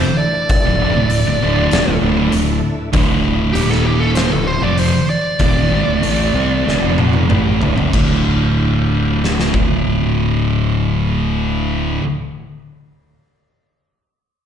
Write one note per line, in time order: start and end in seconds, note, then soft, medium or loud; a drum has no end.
0.00 2.91 D3 medium
0.00 2.90 A3 medium
0.00 2.90 E4 medium
0.00 0.18 C5 medium
0.18 1.98 D5 medium
0.49 kick loud
0.49 open hi-hat medium
0.66 0.79 D1 medium
0.66 0.81 D2 medium
0.66 0.81 A2 medium
0.81 0.95 F1 medium
0.81 0.95 F2 medium
0.81 0.95 C3 medium
0.96 1.24 D1 medium
0.96 1.20 D2 medium
0.96 1.20 A2 medium
1.10 open hi-hat medium
1.26 1.40 D1 medium
1.26 1.40 D2 medium
1.26 1.41 A2 medium
1.41 1.70 D1 medium
1.41 1.71 D2 medium
1.41 1.71 A2 loud
1.41 1.71 D3 loud
1.71 1.86 D#1 medium
1.71 1.85 D#2 medium
1.71 1.86 A#2 medium
1.71 snare loud
1.71 open hi-hat medium
1.86 2.01 D1 medium
1.86 2.00 D2 medium
1.86 2.02 A2 medium
2.01 2.30 D1 medium
2.01 2.31 D2 medium
2.01 2.31 A2 loud
2.01 2.32 D3 loud
2.32 2.61 D1 medium
2.32 2.57 D2 medium
2.32 2.57 A2 medium
2.32 open hi-hat medium
2.93 3.51 D1 medium
2.93 3.54 D2 medium
2.93 3.54 A2 medium
2.93 3.54 D3 medium
2.93 kick loud
2.93 open hi-hat medium
3.53 4.28 D#1 loud
3.53 4.31 D#2 medium
3.53 4.31 A#2 medium
3.53 4.32 D#3 loud
3.53 3.69 G4 medium
3.53 open hi-hat medium
3.71 3.85 A4 medium
3.71 snare soft
3.86 4.00 G4 medium
4.00 4.15 A4 medium
4.15 4.31 C5 medium
4.15 snare loud
4.15 open hi-hat medium
4.31 4.61 D1 medium
4.31 4.57 D2 medium
4.31 4.57 A2 medium
4.31 4.47 A4 medium
4.47 4.63 C5 medium
4.62 4.91 F1 medium
4.62 4.92 F2 medium
4.62 4.93 C3 medium
4.62 4.93 F3 medium
4.62 4.79 D5 medium
4.78 5.09 C5 medium
4.78 open hi-hat medium
5.10 6.94 D5 medium
5.39 5.69 D#1 medium
5.39 5.70 D#2 medium
5.39 5.70 A#2 medium
5.39 5.70 D#3 loud
5.39 kick loud
5.39 open hi-hat medium
5.71 5.86 G#1 medium
5.71 5.85 G#2 medium
5.71 5.87 D#3 medium
5.86 6.02 D1 medium
5.86 6.01 D2 medium
5.86 6.00 A2 loud
6.02 6.32 A1 medium
6.02 6.33 A2 medium
6.02 6.33 E3 medium
6.02 6.34 A3 loud
6.02 open hi-hat medium
6.33 6.64 C2 loud
6.33 6.64 C3 medium
6.33 6.65 G3 medium
6.33 6.65 C4 medium
6.64 6.81 D1 medium
6.64 6.80 D2 medium
6.64 6.81 A2 medium
6.69 snare medium
6.81 7.26 F1 medium
6.81 7.28 F2 medium
6.81 7.28 C3 loud
6.81 7.29 F3 medium
6.98 high tom medium
7.13 high tom medium
7.28 7.60 A1 medium
7.28 7.59 A2 medium
7.28 7.60 E3 medium
7.28 7.60 A3 medium
7.28 mid tom medium
7.59 7.77 D1 medium
7.59 7.75 D2 medium
7.59 7.76 A2 medium
7.59 floor tom medium
7.75 7.93 F1 medium
7.75 7.90 F2 medium
7.75 7.92 C3 medium
7.75 floor tom medium
7.91 11.97 D1 medium
7.91 12.00 D2 medium
7.91 12.01 A2 medium
7.91 kick loud
7.91 crash medium
7.95 12.02 D3 loud
9.24 snare medium
9.40 snare medium
9.54 kick medium